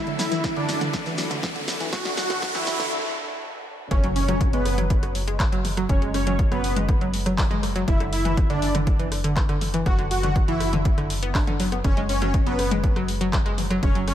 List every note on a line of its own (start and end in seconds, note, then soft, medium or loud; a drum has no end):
0.00 3.87 F#2 medium
0.00 3.87 D3 medium
0.00 3.87 A3 medium
0.00 1.91 E4 medium
0.00 3.87 F#4 medium
0.00 riser medium
0.07 0.14 D3 loud
0.07 closed hi-hat soft
0.19 0.42 E4 loud
0.19 0.42 E5 loud
0.19 snare medium
0.19 open hi-hat loud
0.19 shekere medium
0.31 0.39 E3 loud
0.31 closed hi-hat medium
0.31 mid tom medium
0.31 shekere soft
0.44 kick loud
0.44 snare medium
0.44 closed hi-hat medium
0.44 shekere medium
0.56 0.64 D3 loud
0.56 0.80 D4 loud
0.56 0.80 D5 loud
0.56 closed hi-hat soft
0.69 snare medium
0.69 open hi-hat loud
0.69 shekere medium
0.81 0.88 D3 loud
0.81 closed hi-hat medium
0.81 mid tom medium
0.81 shekere soft
0.93 kick loud
0.93 snare medium
0.93 closed hi-hat medium
0.93 shekere medium
1.06 1.13 E3 loud
1.06 closed hi-hat soft
1.06 shekere soft
1.18 snare medium
1.18 open hi-hat loud
1.18 shekere loud
1.30 1.38 D3 loud
1.30 closed hi-hat medium
1.30 shekere soft
1.43 kick loud
1.43 snare medium
1.43 closed hi-hat medium
1.43 shekere medium
1.56 1.63 D3 loud
1.56 closed hi-hat soft
1.68 snare medium
1.68 open hi-hat loud
1.68 mid tom medium
1.68 shekere medium
1.80 1.88 E3 loud
1.80 closed hi-hat medium
1.80 shekere soft
1.93 3.89 D4 medium
1.93 2.08 F#4 loud
1.93 2.08 F#5 loud
1.93 kick loud
1.93 snare medium
1.93 closed hi-hat medium
1.93 noise sweep medium
1.93 shekere medium
2.05 2.12 D3 loud
2.05 snare medium
2.05 closed hi-hat soft
2.17 2.41 F#4 loud
2.17 2.41 F#5 loud
2.17 snare medium
2.17 open hi-hat loud
2.17 shekere medium
2.30 2.37 D3 loud
2.30 snare medium
2.30 closed hi-hat medium
2.30 mid tom medium
2.30 shekere soft
2.42 kick loud
2.42 snare medium
2.42 closed hi-hat medium
2.42 shekere soft
2.54 2.62 E3 loud
2.54 2.78 E4 loud
2.54 2.78 E5 loud
2.54 snare medium
2.54 closed hi-hat soft
2.54 shekere soft
2.66 snare loud
2.66 open hi-hat loud
2.66 shekere medium
2.80 2.87 D3 loud
2.80 snare medium
2.80 closed hi-hat medium
2.80 mid tom loud
2.80 shekere soft
3.91 5.87 F#1 medium
3.91 4.07 C#4 loud
3.91 4.07 C#5 loud
3.91 kick loud
3.91 cross-stick medium
3.91 closed hi-hat medium
3.91 impact medium
4.04 4.11 F#3 loud
4.04 closed hi-hat soft
4.16 4.39 C#4 loud
4.16 4.39 C#5 loud
4.16 open hi-hat loud
4.28 4.36 F#3 loud
4.28 cross-stick medium
4.28 closed hi-hat medium
4.28 mid tom medium
4.41 kick loud
4.41 closed hi-hat medium
4.53 4.60 G#3 loud
4.53 4.76 B3 loud
4.53 4.76 B4 loud
4.53 closed hi-hat soft
4.66 cross-stick soft
4.66 open hi-hat loud
4.78 4.85 F#3 loud
4.78 closed hi-hat medium
4.78 mid tom medium
4.90 kick loud
4.90 closed hi-hat medium
5.03 5.10 F#3 loud
5.03 cross-stick medium
5.03 closed hi-hat soft
5.15 open hi-hat loud
5.28 5.35 G#3 loud
5.28 closed hi-hat medium
5.40 kick loud
5.40 cross-stick medium
5.40 clap loud
5.40 closed hi-hat medium
5.52 5.59 F#3 loud
5.52 closed hi-hat soft
5.65 open hi-hat loud
5.65 mid tom medium
5.77 5.84 F#3 loud
5.77 cross-stick medium
5.77 closed hi-hat medium
5.89 7.85 F#1 medium
5.89 6.05 C#4 loud
5.89 6.05 C#5 loud
5.89 kick loud
5.89 closed hi-hat medium
6.02 6.09 G#3 loud
6.02 closed hi-hat soft
6.14 6.37 C#4 loud
6.14 6.38 C#5 loud
6.14 cross-stick medium
6.14 open hi-hat loud
6.27 6.34 F#3 loud
6.27 closed hi-hat medium
6.27 mid tom medium
6.39 kick loud
6.39 closed hi-hat medium
6.51 6.59 F#3 loud
6.51 6.75 B3 loud
6.51 6.75 B4 loud
6.51 cross-stick medium
6.51 closed hi-hat soft
6.64 open hi-hat loud
6.76 6.83 G#3 loud
6.76 closed hi-hat medium
6.76 mid tom medium
6.89 kick loud
6.89 cross-stick medium
6.89 closed hi-hat medium
7.01 7.08 F#3 loud
7.01 closed hi-hat soft
7.14 open hi-hat loud
7.26 7.33 F#3 loud
7.26 cross-stick medium
7.26 closed hi-hat medium
7.38 kick loud
7.38 clap loud
7.38 open hi-hat medium
7.51 7.58 G#3 loud
7.51 closed hi-hat soft
7.51 mid tom medium
7.63 cross-stick medium
7.63 open hi-hat loud
7.76 7.83 F#3 loud
7.76 closed hi-hat medium
7.88 9.84 F#1 medium
7.88 8.03 E4 loud
7.88 8.03 E5 loud
7.88 kick loud
7.88 closed hi-hat medium
8.00 8.07 D3 loud
8.00 cross-stick medium
8.00 closed hi-hat soft
8.13 8.36 E4 loud
8.13 8.36 E5 loud
8.13 open hi-hat loud
8.25 8.32 E3 loud
8.25 closed hi-hat medium
8.25 mid tom medium
8.37 kick loud
8.37 cross-stick medium
8.37 closed hi-hat medium
8.50 8.57 D3 loud
8.50 8.73 D4 loud
8.50 8.73 D5 loud
8.50 closed hi-hat soft
8.62 open hi-hat loud
8.75 8.82 D3 loud
8.75 cross-stick medium
8.75 closed hi-hat medium
8.75 mid tom medium
8.87 kick loud
8.87 closed hi-hat medium
8.99 9.07 E3 loud
8.99 closed hi-hat soft
9.12 cross-stick medium
9.12 open hi-hat loud
9.24 9.31 D3 loud
9.24 closed hi-hat medium
9.37 kick loud
9.37 clap loud
9.37 closed hi-hat medium
9.49 9.56 D3 loud
9.49 cross-stick medium
9.49 closed hi-hat soft
9.61 open hi-hat loud
9.61 mid tom medium
9.74 9.81 E3 loud
9.74 closed hi-hat medium
9.86 11.82 F#1 medium
9.86 10.02 F#4 loud
9.86 10.02 F#5 loud
9.86 kick loud
9.86 cross-stick medium
9.86 closed hi-hat medium
9.99 10.06 D3 loud
9.99 closed hi-hat soft
10.11 10.34 F#4 loud
10.11 10.34 F#5 loud
10.11 open hi-hat loud
10.23 10.31 D3 loud
10.23 cross-stick medium
10.23 closed hi-hat medium
10.23 mid tom medium
10.36 kick loud
10.36 closed hi-hat medium
10.48 10.55 E3 loud
10.48 10.71 E4 loud
10.48 10.71 E5 loud
10.48 closed hi-hat soft
10.60 cross-stick medium
10.60 open hi-hat loud
10.73 10.80 D3 loud
10.73 closed hi-hat medium
10.73 mid tom loud
10.85 kick loud
10.85 closed hi-hat medium
10.98 11.05 D3 loud
10.98 cross-stick medium
10.98 closed hi-hat soft
11.10 open hi-hat loud
11.23 11.30 B3 loud
11.23 closed hi-hat medium
11.35 11.39 D4 medium
11.35 kick loud
11.35 cross-stick medium
11.35 clap loud
11.35 open hi-hat medium
11.47 11.58 D3 loud
11.47 closed hi-hat soft
11.47 mid tom loud
11.60 11.67 F#3 medium
11.60 open hi-hat loud
11.72 11.79 B3 medium
11.72 cross-stick medium
11.72 closed hi-hat medium
11.84 13.80 F#1 medium
11.84 12.00 C#4 loud
11.84 12.00 C#5 loud
11.84 kick loud
11.84 cross-stick medium
11.84 closed hi-hat medium
11.97 12.04 G#3 loud
11.97 closed hi-hat soft
12.09 12.32 C#4 loud
12.09 12.32 C#5 loud
12.09 open hi-hat loud
12.22 12.29 F#3 loud
12.22 cross-stick medium
12.22 closed hi-hat medium
12.22 mid tom medium
12.34 kick loud
12.34 closed hi-hat medium
12.46 12.54 F#3 loud
12.46 12.70 B3 loud
12.46 12.70 B4 loud
12.46 closed hi-hat soft
12.59 cross-stick medium
12.59 open hi-hat loud
12.71 12.78 G#3 loud
12.71 closed hi-hat medium
12.71 mid tom loud
12.84 kick loud
12.84 closed hi-hat medium
12.96 13.03 F#3 loud
12.96 cross-stick medium
12.96 closed hi-hat soft
13.08 open hi-hat loud
13.21 13.28 F#3 loud
13.21 closed hi-hat medium
13.33 kick loud
13.33 cross-stick medium
13.33 clap loud
13.33 closed hi-hat medium
13.46 13.53 G#3 loud
13.46 closed hi-hat soft
13.58 open hi-hat loud
13.58 mid tom medium
13.70 13.78 F#3 loud
13.70 cross-stick medium
13.70 closed hi-hat medium
13.83 14.14 F#1 medium
13.83 13.98 C#4 loud
13.83 13.98 C#5 loud
13.83 kick loud
13.83 closed hi-hat medium
13.95 14.02 F#3 loud
13.95 closed hi-hat soft
14.08 14.14 C#4 loud
14.08 14.14 C#5 medium
14.08 cross-stick medium
14.08 open hi-hat loud